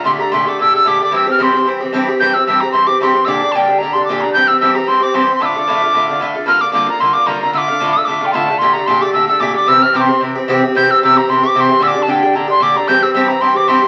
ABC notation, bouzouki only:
X:1
M:4/4
L:1/8
Q:"Swing" 1/4=225
K:Gdor
V:1 name="Bouzouki"
[B,,D,A,G] [D,A,G] [B,,D,A,G] [D,A,G] [B,,D,A,G] [D,A,G] [B,,D,A,G] [D,A,G] | [G,,E,CG] [E,CG] [G,,E,CG] [E,CG] [G,,E,CG] [E,CG] [G,,E,CG] [E,CG] | [G,,E,CG] [E,CG] [G,,E,CG] [E,CG] [G,,E,CG] [E,CG] [G,,E,CG] [E,CG] | [B,,D,DG] [D,DG] [B,,D,DG] [D,DG] [B,,D,DG] [D,DG] [B,,D,DG] [D,DG] |
[G,,E,CG] [E,CG] [G,,E,CG] [E,CG] [G,,E,CG] [E,CG] [G,,E,CG] [E,CG] | [A,,D,A,F] [D,A,F] [A,,D,A,F] [D,A,F] [A,,D,A,F] [D,A,F] [A,,D,A,F] [D,A,F] | [G,,D,B,F] [D,B,F] [G,,D,B,F] [D,B,F] [G,,D,B,F] [D,B,F] [G,,D,B,F] [D,B,F] | [A,,D,A,F] [D,A,F] [A,,D,A,F] [D,A,F] [A,,D,A,F] [D,A,F] [A,,D,A,F] [D,A,F] |
[B,,D,A,G] [D,A,G] [B,,D,A,G] [D,A,G] [B,,D,A,G] [D,A,G] [B,,D,A,G] [D,A,G] | [C,E,CG] [E,CG] [C,E,CG] [E,CG] [C,E,CG] [E,CG] [C,E,CG] [E,CG] | [C,E,CG] [E,CG] [C,E,CG] [E,CG] [C,E,CG] [E,CG] [C,E,CG] [E,CG] | [B,,D,DG] [D,DG] [B,,D,DG] [D,DG] [B,,D,DG] [D,DG] [B,,D,DG] [D,DG] |
[G,,E,CG] [E,CG] [G,,E,CG] [E,CG] [G,,E,CG] [E,CG] [G,,E,CG] [E,CG] |]